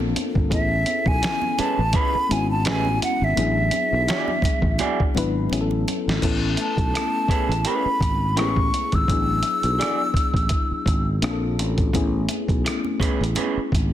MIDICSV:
0, 0, Header, 1, 8, 480
1, 0, Start_track
1, 0, Key_signature, 3, "major"
1, 0, Tempo, 714286
1, 342, Time_signature, 4, 2, 24, 8
1, 9361, End_track
2, 0, Start_track
2, 0, Title_t, "Flute"
2, 0, Program_c, 0, 73
2, 354, Note_on_c, 0, 76, 90
2, 724, Note_on_c, 0, 80, 93
2, 734, Note_off_c, 0, 76, 0
2, 1072, Note_on_c, 0, 81, 88
2, 1082, Note_off_c, 0, 80, 0
2, 1318, Note_on_c, 0, 83, 110
2, 1328, Note_off_c, 0, 81, 0
2, 1561, Note_on_c, 0, 80, 94
2, 1571, Note_off_c, 0, 83, 0
2, 1680, Note_off_c, 0, 80, 0
2, 1684, Note_on_c, 0, 81, 89
2, 1780, Note_off_c, 0, 81, 0
2, 1803, Note_on_c, 0, 80, 93
2, 2017, Note_off_c, 0, 80, 0
2, 2039, Note_on_c, 0, 78, 85
2, 2179, Note_on_c, 0, 76, 83
2, 2189, Note_off_c, 0, 78, 0
2, 3366, Note_off_c, 0, 76, 0
2, 4440, Note_on_c, 0, 81, 82
2, 5155, Note_on_c, 0, 83, 89
2, 5165, Note_off_c, 0, 81, 0
2, 5629, Note_on_c, 0, 85, 85
2, 5640, Note_off_c, 0, 83, 0
2, 6012, Note_on_c, 0, 88, 88
2, 6022, Note_off_c, 0, 85, 0
2, 7443, Note_off_c, 0, 88, 0
2, 9361, End_track
3, 0, Start_track
3, 0, Title_t, "Clean electric guitar"
3, 0, Program_c, 1, 27
3, 1066, Note_on_c, 1, 61, 77
3, 1069, Note_on_c, 1, 68, 75
3, 1073, Note_on_c, 1, 71, 82
3, 1209, Note_off_c, 1, 61, 0
3, 1210, Note_off_c, 1, 68, 0
3, 1212, Note_off_c, 1, 71, 0
3, 1304, Note_on_c, 1, 61, 76
3, 1310, Note_on_c, 1, 68, 75
3, 1311, Note_on_c, 1, 71, 85
3, 1448, Note_off_c, 1, 61, 0
3, 1451, Note_off_c, 1, 68, 0
3, 1451, Note_off_c, 1, 71, 0
3, 1785, Note_on_c, 1, 61, 78
3, 1787, Note_on_c, 1, 68, 94
3, 1789, Note_on_c, 1, 71, 95
3, 1928, Note_off_c, 1, 61, 0
3, 1929, Note_off_c, 1, 68, 0
3, 1930, Note_off_c, 1, 71, 0
3, 2744, Note_on_c, 1, 66, 78
3, 2747, Note_on_c, 1, 68, 79
3, 2753, Note_on_c, 1, 74, 81
3, 2888, Note_off_c, 1, 66, 0
3, 2889, Note_off_c, 1, 68, 0
3, 2892, Note_off_c, 1, 74, 0
3, 3224, Note_on_c, 1, 66, 79
3, 3224, Note_on_c, 1, 68, 84
3, 3232, Note_on_c, 1, 74, 85
3, 3367, Note_off_c, 1, 66, 0
3, 3368, Note_off_c, 1, 68, 0
3, 3371, Note_off_c, 1, 74, 0
3, 4900, Note_on_c, 1, 61, 72
3, 4904, Note_on_c, 1, 68, 85
3, 4909, Note_on_c, 1, 71, 85
3, 5046, Note_off_c, 1, 61, 0
3, 5047, Note_off_c, 1, 68, 0
3, 5050, Note_off_c, 1, 71, 0
3, 5144, Note_on_c, 1, 61, 67
3, 5145, Note_on_c, 1, 68, 77
3, 5153, Note_on_c, 1, 71, 91
3, 5287, Note_off_c, 1, 61, 0
3, 5288, Note_off_c, 1, 68, 0
3, 5292, Note_off_c, 1, 71, 0
3, 5621, Note_on_c, 1, 61, 77
3, 5622, Note_on_c, 1, 68, 85
3, 5625, Note_on_c, 1, 71, 88
3, 5766, Note_off_c, 1, 61, 0
3, 5767, Note_off_c, 1, 68, 0
3, 5768, Note_off_c, 1, 71, 0
3, 6577, Note_on_c, 1, 66, 66
3, 6579, Note_on_c, 1, 68, 77
3, 6582, Note_on_c, 1, 74, 91
3, 6724, Note_off_c, 1, 66, 0
3, 6725, Note_off_c, 1, 68, 0
3, 6727, Note_off_c, 1, 74, 0
3, 8737, Note_on_c, 1, 61, 80
3, 8741, Note_on_c, 1, 68, 78
3, 8743, Note_on_c, 1, 71, 79
3, 8884, Note_off_c, 1, 61, 0
3, 8886, Note_off_c, 1, 68, 0
3, 8887, Note_off_c, 1, 71, 0
3, 8980, Note_on_c, 1, 61, 86
3, 8983, Note_on_c, 1, 68, 82
3, 8989, Note_on_c, 1, 71, 75
3, 9126, Note_off_c, 1, 61, 0
3, 9127, Note_off_c, 1, 68, 0
3, 9130, Note_off_c, 1, 71, 0
3, 9361, End_track
4, 0, Start_track
4, 0, Title_t, "FM electric piano"
4, 0, Program_c, 2, 5
4, 0, Control_c, 2, 64, 127
4, 0, Note_on_c, 2, 58, 88
4, 0, Note_on_c, 2, 60, 79
4, 0, Note_on_c, 2, 62, 77
4, 0, Note_on_c, 2, 65, 75
4, 0, Note_on_c, 2, 69, 91
4, 315, Note_off_c, 2, 58, 0
4, 318, Note_off_c, 2, 60, 0
4, 319, Note_off_c, 2, 62, 0
4, 324, Note_off_c, 2, 65, 0
4, 338, Note_on_c, 2, 68, 73
4, 343, Note_on_c, 2, 59, 69
4, 347, Note_off_c, 2, 69, 0
4, 350, Note_on_c, 2, 61, 65
4, 351, Control_c, 2, 64, 0
4, 356, Note_on_c, 2, 64, 69
4, 360, Note_on_c, 2, 69, 74
4, 472, Control_c, 2, 64, 127
4, 1248, Note_off_c, 2, 68, 0
4, 1251, Note_off_c, 2, 59, 0
4, 1254, Note_off_c, 2, 61, 0
4, 1257, Note_off_c, 2, 64, 0
4, 1259, Note_off_c, 2, 69, 0
4, 1540, Note_on_c, 2, 56, 71
4, 1550, Note_on_c, 2, 59, 63
4, 1552, Note_on_c, 2, 61, 62
4, 1560, Note_on_c, 2, 64, 61
4, 1562, Note_on_c, 2, 66, 74
4, 2222, Note_off_c, 2, 56, 0
4, 2227, Note_off_c, 2, 59, 0
4, 2228, Note_off_c, 2, 61, 0
4, 2232, Note_off_c, 2, 64, 0
4, 2233, Note_off_c, 2, 66, 0
4, 2260, Note_on_c, 2, 54, 73
4, 2263, Note_on_c, 2, 59, 61
4, 2269, Note_on_c, 2, 62, 66
4, 2271, Control_c, 2, 64, 0
4, 2276, Note_on_c, 2, 64, 62
4, 2280, Note_on_c, 2, 68, 81
4, 2385, Control_c, 2, 64, 127
4, 3169, Note_off_c, 2, 54, 0
4, 3170, Note_off_c, 2, 59, 0
4, 3173, Note_off_c, 2, 62, 0
4, 3177, Note_off_c, 2, 64, 0
4, 3179, Note_off_c, 2, 68, 0
4, 3459, Note_on_c, 2, 54, 88
4, 3463, Note_on_c, 2, 59, 82
4, 3472, Note_on_c, 2, 62, 83
4, 3476, Note_on_c, 2, 64, 78
4, 3480, Note_on_c, 2, 71, 91
4, 3696, Note_off_c, 2, 54, 0
4, 3702, Note_off_c, 2, 59, 0
4, 3704, Note_on_c, 2, 54, 87
4, 3707, Note_off_c, 2, 62, 0
4, 3709, Note_off_c, 2, 64, 0
4, 3710, Control_c, 2, 64, 0
4, 3710, Note_on_c, 2, 59, 83
4, 3711, Note_off_c, 2, 71, 0
4, 3714, Note_on_c, 2, 61, 84
4, 3717, Note_on_c, 2, 64, 86
4, 3721, Note_on_c, 2, 68, 75
4, 3760, Note_off_c, 2, 68, 0
4, 3769, Note_on_c, 2, 69, 101
4, 3809, Control_c, 2, 64, 127
4, 4157, Note_off_c, 2, 54, 0
4, 4160, Note_off_c, 2, 59, 0
4, 4162, Note_off_c, 2, 61, 0
4, 4163, Note_off_c, 2, 64, 0
4, 4181, Note_on_c, 2, 57, 79
4, 4186, Note_on_c, 2, 59, 73
4, 4190, Note_off_c, 2, 69, 0
4, 4190, Note_on_c, 2, 61, 75
4, 4191, Control_c, 2, 64, 0
4, 4195, Note_on_c, 2, 64, 75
4, 4201, Note_on_c, 2, 69, 86
4, 4306, Control_c, 2, 64, 127
4, 5089, Note_off_c, 2, 57, 0
4, 5092, Note_off_c, 2, 59, 0
4, 5094, Note_off_c, 2, 61, 0
4, 5096, Note_off_c, 2, 64, 0
4, 5100, Note_off_c, 2, 69, 0
4, 5625, Note_on_c, 2, 56, 64
4, 5631, Note_on_c, 2, 59, 59
4, 5638, Note_on_c, 2, 61, 58
4, 5638, Note_on_c, 2, 64, 62
4, 5645, Note_on_c, 2, 68, 75
4, 6078, Note_off_c, 2, 56, 0
4, 6080, Note_off_c, 2, 59, 0
4, 6084, Note_off_c, 2, 61, 0
4, 6084, Note_off_c, 2, 64, 0
4, 6088, Note_off_c, 2, 68, 0
4, 6105, Note_on_c, 2, 54, 61
4, 6110, Control_c, 2, 64, 0
4, 6112, Note_on_c, 2, 59, 65
4, 6118, Note_on_c, 2, 62, 63
4, 6122, Note_on_c, 2, 64, 65
4, 6126, Note_on_c, 2, 68, 74
4, 6225, Control_c, 2, 64, 127
4, 7011, Note_off_c, 2, 54, 0
4, 7015, Note_off_c, 2, 59, 0
4, 7018, Note_off_c, 2, 62, 0
4, 7020, Note_off_c, 2, 64, 0
4, 7022, Note_off_c, 2, 68, 0
4, 7539, Note_on_c, 2, 58, 80
4, 7544, Note_on_c, 2, 60, 71
4, 7545, Note_on_c, 2, 62, 75
4, 7551, Control_c, 2, 64, 0
4, 7555, Note_on_c, 2, 65, 74
4, 7557, Note_on_c, 2, 68, 72
4, 7597, Note_off_c, 2, 68, 0
4, 7601, Note_on_c, 2, 69, 90
4, 7656, Control_c, 2, 64, 127
4, 7994, Note_off_c, 2, 58, 0
4, 7997, Note_off_c, 2, 60, 0
4, 7998, Note_off_c, 2, 62, 0
4, 8002, Note_off_c, 2, 65, 0
4, 8019, Note_on_c, 2, 57, 87
4, 8025, Note_off_c, 2, 69, 0
4, 8025, Note_on_c, 2, 59, 81
4, 8027, Note_on_c, 2, 61, 74
4, 8030, Control_c, 2, 64, 0
4, 8033, Note_on_c, 2, 64, 81
4, 8038, Note_on_c, 2, 68, 92
4, 8166, Control_c, 2, 64, 127
4, 8928, Note_off_c, 2, 57, 0
4, 8932, Note_off_c, 2, 59, 0
4, 8933, Note_off_c, 2, 61, 0
4, 8936, Note_off_c, 2, 64, 0
4, 8938, Note_off_c, 2, 68, 0
4, 9361, End_track
5, 0, Start_track
5, 0, Title_t, "Fretless electric bass"
5, 0, Program_c, 3, 35
5, 0, Note_on_c, 3, 34, 94
5, 85, Note_off_c, 3, 34, 0
5, 240, Note_on_c, 3, 31, 89
5, 345, Note_off_c, 3, 31, 0
5, 345, Note_on_c, 3, 33, 83
5, 559, Note_off_c, 3, 33, 0
5, 714, Note_on_c, 3, 35, 79
5, 811, Note_off_c, 3, 35, 0
5, 1201, Note_on_c, 3, 33, 86
5, 1295, Note_off_c, 3, 33, 0
5, 1551, Note_on_c, 3, 32, 80
5, 1791, Note_off_c, 3, 32, 0
5, 1791, Note_on_c, 3, 33, 91
5, 2003, Note_off_c, 3, 33, 0
5, 2160, Note_on_c, 3, 32, 84
5, 2255, Note_off_c, 3, 32, 0
5, 2266, Note_on_c, 3, 33, 95
5, 2480, Note_off_c, 3, 33, 0
5, 2638, Note_on_c, 3, 35, 76
5, 2733, Note_off_c, 3, 35, 0
5, 3111, Note_on_c, 3, 33, 89
5, 3210, Note_off_c, 3, 33, 0
5, 3468, Note_on_c, 3, 32, 93
5, 3681, Note_off_c, 3, 32, 0
5, 3708, Note_on_c, 3, 33, 90
5, 3921, Note_off_c, 3, 33, 0
5, 4084, Note_on_c, 3, 32, 79
5, 4177, Note_off_c, 3, 32, 0
5, 4186, Note_on_c, 3, 33, 77
5, 4400, Note_off_c, 3, 33, 0
5, 4555, Note_on_c, 3, 35, 69
5, 4652, Note_off_c, 3, 35, 0
5, 5033, Note_on_c, 3, 33, 90
5, 5130, Note_off_c, 3, 33, 0
5, 5383, Note_on_c, 3, 32, 79
5, 5622, Note_off_c, 3, 32, 0
5, 5622, Note_on_c, 3, 33, 75
5, 5838, Note_off_c, 3, 33, 0
5, 6003, Note_on_c, 3, 32, 77
5, 6096, Note_off_c, 3, 32, 0
5, 6109, Note_on_c, 3, 33, 83
5, 6322, Note_off_c, 3, 33, 0
5, 6476, Note_on_c, 3, 35, 77
5, 6572, Note_off_c, 3, 35, 0
5, 6949, Note_on_c, 3, 33, 77
5, 7048, Note_off_c, 3, 33, 0
5, 7301, Note_on_c, 3, 32, 80
5, 7517, Note_off_c, 3, 32, 0
5, 7544, Note_on_c, 3, 34, 91
5, 7785, Note_off_c, 3, 34, 0
5, 7785, Note_on_c, 3, 33, 85
5, 7999, Note_off_c, 3, 33, 0
5, 8024, Note_on_c, 3, 33, 93
5, 8239, Note_off_c, 3, 33, 0
5, 8392, Note_on_c, 3, 35, 80
5, 8490, Note_off_c, 3, 35, 0
5, 8875, Note_on_c, 3, 33, 91
5, 8972, Note_off_c, 3, 33, 0
5, 9225, Note_on_c, 3, 32, 81
5, 9361, Note_off_c, 3, 32, 0
5, 9361, End_track
6, 0, Start_track
6, 0, Title_t, "Muted clean electric guitar strokes"
6, 820, Note_on_c, 9, 29, 41
6, 887, Note_off_c, 9, 29, 0
6, 4662, Note_on_c, 9, 29, 33
6, 4729, Note_off_c, 9, 29, 0
6, 8499, Note_on_c, 9, 29, 43
6, 8566, Note_off_c, 9, 29, 0
6, 9361, End_track
7, 0, Start_track
7, 0, Title_t, "Muted fretless electric bass strokes"
7, 1070, Note_on_c, 9, 29, 47
7, 1137, Note_off_c, 9, 29, 0
7, 1445, Note_on_c, 9, 29, 45
7, 1513, Note_off_c, 9, 29, 0
7, 2977, Note_on_c, 9, 29, 46
7, 3044, Note_off_c, 9, 29, 0
7, 4898, Note_on_c, 9, 29, 41
7, 4965, Note_off_c, 9, 29, 0
7, 5278, Note_on_c, 9, 29, 46
7, 5345, Note_off_c, 9, 29, 0
7, 6817, Note_on_c, 9, 29, 44
7, 6885, Note_off_c, 9, 29, 0
7, 7200, Note_on_c, 9, 29, 44
7, 7267, Note_off_c, 9, 29, 0
7, 8737, Note_on_c, 9, 29, 41
7, 8805, Note_off_c, 9, 29, 0
7, 9119, Note_on_c, 9, 29, 46
7, 9187, Note_off_c, 9, 29, 0
7, 9361, End_track
8, 0, Start_track
8, 0, Title_t, "Drums"
8, 0, Note_on_c, 9, 63, 65
8, 66, Note_off_c, 9, 63, 0
8, 109, Note_on_c, 9, 42, 76
8, 112, Note_on_c, 9, 62, 30
8, 112, Note_on_c, 9, 63, 66
8, 176, Note_off_c, 9, 42, 0
8, 179, Note_off_c, 9, 62, 0
8, 179, Note_off_c, 9, 63, 0
8, 237, Note_on_c, 9, 36, 81
8, 305, Note_off_c, 9, 36, 0
8, 342, Note_on_c, 9, 36, 107
8, 345, Note_on_c, 9, 62, 29
8, 345, Note_on_c, 9, 64, 65
8, 348, Note_on_c, 9, 42, 81
8, 409, Note_off_c, 9, 36, 0
8, 412, Note_off_c, 9, 62, 0
8, 412, Note_off_c, 9, 64, 0
8, 415, Note_off_c, 9, 42, 0
8, 578, Note_on_c, 9, 42, 67
8, 592, Note_on_c, 9, 63, 62
8, 646, Note_off_c, 9, 42, 0
8, 659, Note_off_c, 9, 63, 0
8, 711, Note_on_c, 9, 36, 90
8, 778, Note_off_c, 9, 36, 0
8, 825, Note_on_c, 9, 42, 74
8, 835, Note_on_c, 9, 38, 104
8, 836, Note_on_c, 9, 26, 76
8, 892, Note_off_c, 9, 42, 0
8, 902, Note_off_c, 9, 38, 0
8, 903, Note_off_c, 9, 26, 0
8, 951, Note_on_c, 9, 63, 62
8, 1019, Note_off_c, 9, 63, 0
8, 1063, Note_on_c, 9, 64, 67
8, 1066, Note_on_c, 9, 42, 66
8, 1130, Note_off_c, 9, 64, 0
8, 1133, Note_off_c, 9, 42, 0
8, 1294, Note_on_c, 9, 63, 60
8, 1294, Note_on_c, 9, 64, 57
8, 1296, Note_on_c, 9, 42, 74
8, 1300, Note_on_c, 9, 36, 84
8, 1361, Note_off_c, 9, 63, 0
8, 1361, Note_off_c, 9, 64, 0
8, 1363, Note_off_c, 9, 42, 0
8, 1367, Note_off_c, 9, 36, 0
8, 1553, Note_on_c, 9, 42, 68
8, 1620, Note_off_c, 9, 42, 0
8, 1781, Note_on_c, 9, 42, 69
8, 1794, Note_on_c, 9, 38, 109
8, 1795, Note_on_c, 9, 26, 81
8, 1848, Note_off_c, 9, 42, 0
8, 1861, Note_off_c, 9, 38, 0
8, 1862, Note_off_c, 9, 26, 0
8, 1912, Note_on_c, 9, 63, 65
8, 1980, Note_off_c, 9, 63, 0
8, 2032, Note_on_c, 9, 42, 75
8, 2032, Note_on_c, 9, 62, 30
8, 2032, Note_on_c, 9, 63, 64
8, 2099, Note_off_c, 9, 42, 0
8, 2099, Note_off_c, 9, 62, 0
8, 2099, Note_off_c, 9, 63, 0
8, 2266, Note_on_c, 9, 62, 30
8, 2266, Note_on_c, 9, 64, 62
8, 2267, Note_on_c, 9, 42, 89
8, 2333, Note_off_c, 9, 62, 0
8, 2333, Note_off_c, 9, 64, 0
8, 2334, Note_off_c, 9, 42, 0
8, 2495, Note_on_c, 9, 42, 68
8, 2509, Note_on_c, 9, 62, 30
8, 2509, Note_on_c, 9, 63, 64
8, 2562, Note_off_c, 9, 42, 0
8, 2577, Note_off_c, 9, 62, 0
8, 2577, Note_off_c, 9, 63, 0
8, 2740, Note_on_c, 9, 62, 24
8, 2745, Note_on_c, 9, 42, 69
8, 2755, Note_on_c, 9, 38, 104
8, 2756, Note_on_c, 9, 26, 83
8, 2807, Note_off_c, 9, 62, 0
8, 2812, Note_off_c, 9, 42, 0
8, 2822, Note_off_c, 9, 38, 0
8, 2823, Note_off_c, 9, 26, 0
8, 2874, Note_on_c, 9, 63, 63
8, 2941, Note_off_c, 9, 63, 0
8, 2972, Note_on_c, 9, 36, 87
8, 2982, Note_on_c, 9, 64, 72
8, 2991, Note_on_c, 9, 42, 62
8, 3039, Note_off_c, 9, 36, 0
8, 3049, Note_off_c, 9, 64, 0
8, 3058, Note_off_c, 9, 42, 0
8, 3105, Note_on_c, 9, 36, 83
8, 3172, Note_off_c, 9, 36, 0
8, 3215, Note_on_c, 9, 62, 26
8, 3215, Note_on_c, 9, 63, 60
8, 3215, Note_on_c, 9, 64, 61
8, 3219, Note_on_c, 9, 42, 69
8, 3282, Note_off_c, 9, 62, 0
8, 3282, Note_off_c, 9, 63, 0
8, 3282, Note_off_c, 9, 64, 0
8, 3286, Note_off_c, 9, 42, 0
8, 3360, Note_on_c, 9, 36, 82
8, 3427, Note_off_c, 9, 36, 0
8, 3458, Note_on_c, 9, 62, 27
8, 3476, Note_on_c, 9, 42, 66
8, 3525, Note_off_c, 9, 62, 0
8, 3543, Note_off_c, 9, 42, 0
8, 3693, Note_on_c, 9, 62, 31
8, 3714, Note_on_c, 9, 42, 75
8, 3760, Note_off_c, 9, 62, 0
8, 3781, Note_off_c, 9, 42, 0
8, 3836, Note_on_c, 9, 63, 71
8, 3903, Note_off_c, 9, 63, 0
8, 3950, Note_on_c, 9, 62, 31
8, 3950, Note_on_c, 9, 63, 66
8, 3953, Note_on_c, 9, 42, 75
8, 4017, Note_off_c, 9, 62, 0
8, 4017, Note_off_c, 9, 63, 0
8, 4020, Note_off_c, 9, 42, 0
8, 4094, Note_on_c, 9, 38, 83
8, 4161, Note_off_c, 9, 38, 0
8, 4181, Note_on_c, 9, 36, 101
8, 4181, Note_on_c, 9, 49, 88
8, 4188, Note_on_c, 9, 42, 73
8, 4248, Note_off_c, 9, 36, 0
8, 4249, Note_off_c, 9, 49, 0
8, 4256, Note_off_c, 9, 42, 0
8, 4417, Note_on_c, 9, 42, 53
8, 4484, Note_off_c, 9, 42, 0
8, 4552, Note_on_c, 9, 36, 73
8, 4557, Note_on_c, 9, 42, 30
8, 4619, Note_off_c, 9, 36, 0
8, 4624, Note_off_c, 9, 42, 0
8, 4673, Note_on_c, 9, 42, 63
8, 4683, Note_on_c, 9, 37, 92
8, 4740, Note_off_c, 9, 42, 0
8, 4750, Note_off_c, 9, 37, 0
8, 4895, Note_on_c, 9, 36, 78
8, 4911, Note_on_c, 9, 42, 62
8, 4962, Note_off_c, 9, 36, 0
8, 4978, Note_off_c, 9, 42, 0
8, 5051, Note_on_c, 9, 42, 30
8, 5118, Note_off_c, 9, 42, 0
8, 5139, Note_on_c, 9, 42, 66
8, 5206, Note_off_c, 9, 42, 0
8, 5379, Note_on_c, 9, 36, 84
8, 5393, Note_on_c, 9, 42, 65
8, 5446, Note_off_c, 9, 36, 0
8, 5460, Note_off_c, 9, 42, 0
8, 5626, Note_on_c, 9, 42, 64
8, 5638, Note_on_c, 9, 37, 97
8, 5693, Note_off_c, 9, 42, 0
8, 5706, Note_off_c, 9, 37, 0
8, 5755, Note_on_c, 9, 36, 97
8, 5822, Note_off_c, 9, 36, 0
8, 5872, Note_on_c, 9, 42, 70
8, 5939, Note_off_c, 9, 42, 0
8, 5996, Note_on_c, 9, 42, 33
8, 5998, Note_on_c, 9, 36, 82
8, 6063, Note_off_c, 9, 42, 0
8, 6066, Note_off_c, 9, 36, 0
8, 6102, Note_on_c, 9, 36, 96
8, 6112, Note_on_c, 9, 42, 78
8, 6169, Note_off_c, 9, 36, 0
8, 6179, Note_off_c, 9, 42, 0
8, 6334, Note_on_c, 9, 42, 63
8, 6402, Note_off_c, 9, 42, 0
8, 6474, Note_on_c, 9, 42, 32
8, 6541, Note_off_c, 9, 42, 0
8, 6591, Note_on_c, 9, 42, 64
8, 6602, Note_on_c, 9, 37, 104
8, 6658, Note_off_c, 9, 42, 0
8, 6669, Note_off_c, 9, 37, 0
8, 6813, Note_on_c, 9, 36, 79
8, 6832, Note_on_c, 9, 42, 64
8, 6880, Note_off_c, 9, 36, 0
8, 6899, Note_off_c, 9, 42, 0
8, 6946, Note_on_c, 9, 36, 76
8, 6965, Note_on_c, 9, 42, 29
8, 7013, Note_off_c, 9, 36, 0
8, 7033, Note_off_c, 9, 42, 0
8, 7051, Note_on_c, 9, 42, 72
8, 7058, Note_on_c, 9, 36, 80
8, 7118, Note_off_c, 9, 42, 0
8, 7126, Note_off_c, 9, 36, 0
8, 7297, Note_on_c, 9, 36, 90
8, 7308, Note_on_c, 9, 42, 60
8, 7364, Note_off_c, 9, 36, 0
8, 7375, Note_off_c, 9, 42, 0
8, 7542, Note_on_c, 9, 42, 67
8, 7555, Note_on_c, 9, 37, 92
8, 7609, Note_off_c, 9, 42, 0
8, 7622, Note_off_c, 9, 37, 0
8, 7790, Note_on_c, 9, 42, 74
8, 7857, Note_off_c, 9, 42, 0
8, 7914, Note_on_c, 9, 42, 33
8, 7915, Note_on_c, 9, 36, 80
8, 7982, Note_off_c, 9, 42, 0
8, 7983, Note_off_c, 9, 36, 0
8, 8020, Note_on_c, 9, 36, 101
8, 8024, Note_on_c, 9, 62, 29
8, 8024, Note_on_c, 9, 64, 64
8, 8028, Note_on_c, 9, 42, 77
8, 8087, Note_off_c, 9, 36, 0
8, 8091, Note_off_c, 9, 62, 0
8, 8091, Note_off_c, 9, 64, 0
8, 8096, Note_off_c, 9, 42, 0
8, 8256, Note_on_c, 9, 42, 60
8, 8271, Note_on_c, 9, 63, 62
8, 8323, Note_off_c, 9, 42, 0
8, 8338, Note_off_c, 9, 63, 0
8, 8390, Note_on_c, 9, 36, 82
8, 8395, Note_on_c, 9, 42, 32
8, 8457, Note_off_c, 9, 36, 0
8, 8462, Note_off_c, 9, 42, 0
8, 8508, Note_on_c, 9, 42, 71
8, 8518, Note_on_c, 9, 37, 99
8, 8575, Note_off_c, 9, 42, 0
8, 8586, Note_off_c, 9, 37, 0
8, 8632, Note_on_c, 9, 63, 63
8, 8699, Note_off_c, 9, 63, 0
8, 8734, Note_on_c, 9, 36, 87
8, 8744, Note_on_c, 9, 62, 29
8, 8744, Note_on_c, 9, 64, 68
8, 8753, Note_on_c, 9, 42, 70
8, 8801, Note_off_c, 9, 36, 0
8, 8811, Note_off_c, 9, 62, 0
8, 8811, Note_off_c, 9, 64, 0
8, 8820, Note_off_c, 9, 42, 0
8, 8895, Note_on_c, 9, 42, 30
8, 8962, Note_off_c, 9, 42, 0
8, 8974, Note_on_c, 9, 62, 28
8, 8974, Note_on_c, 9, 63, 57
8, 8974, Note_on_c, 9, 64, 56
8, 8978, Note_on_c, 9, 42, 67
8, 9041, Note_off_c, 9, 62, 0
8, 9041, Note_off_c, 9, 63, 0
8, 9041, Note_off_c, 9, 64, 0
8, 9045, Note_off_c, 9, 42, 0
8, 9220, Note_on_c, 9, 36, 83
8, 9237, Note_on_c, 9, 42, 62
8, 9288, Note_off_c, 9, 36, 0
8, 9305, Note_off_c, 9, 42, 0
8, 9361, End_track
0, 0, End_of_file